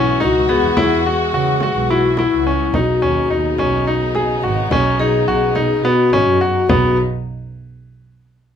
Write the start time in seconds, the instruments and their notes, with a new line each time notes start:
Already playing: string section E3 G#3 F#4, grand piano C#4, vibraphone E4
0.20 double bass C#2, grand piano D#4, vibraphone F#4, frame drum
0.49 grand piano B3, vibraphone G#4
0.63 double bass E2
0.77 double bass E2, grand piano E4, frame drum
1.04 grand piano F#4, frame drum
1.33 double bass C#3, grand piano F#4, frame drum
1.60 grand piano F#4, frame drum
1.75 double bass B1
1.89 grand piano E4, vibraphone F#4
2.17 grand piano E4, vibraphone E4, frame drum
2.32 double bass C#2
2.47 grand piano C#4
2.73 double bass B1, string section C#3 B3 D#4, grand piano D#4, vibraphone F#4, frame drum
3.02 double bass D#2, grand piano C#4
3.30 double bass D#2, grand piano D#4
3.58 double bass B1, grand piano C#4, frame drum
3.87 grand piano D#4, frame drum
4.15 grand piano G#4, frame drum
4.43 double bass G#1, grand piano F#4
4.71 double bass B1, grand piano C#4, frame drum
4.99 double bass B1, grand piano D#4, vibraphone G#4
5.27 double bass B1, grand piano F#4
5.55 double bass B2, grand piano D#4, frame drum
5.84 grand piano B3, vibraphone F#4, frame drum
6.12 double bass G#1, grand piano C#4, frame drum
6.26 double bass F#2
6.41 grand piano F#4
6.67 double bass B1, string section C#3 B3 D#4, grand piano B3, frame drum